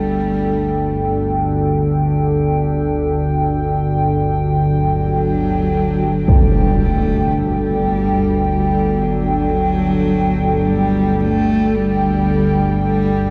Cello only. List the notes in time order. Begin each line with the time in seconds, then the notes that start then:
Already playing: G3
4.66 F#3
6.29 G3
6.84 A3
7.31 A3
7.38 G3
8.48 G3
9.02 F#3
10.66 G3
11.21 A3
11.75 G3
12.84 G3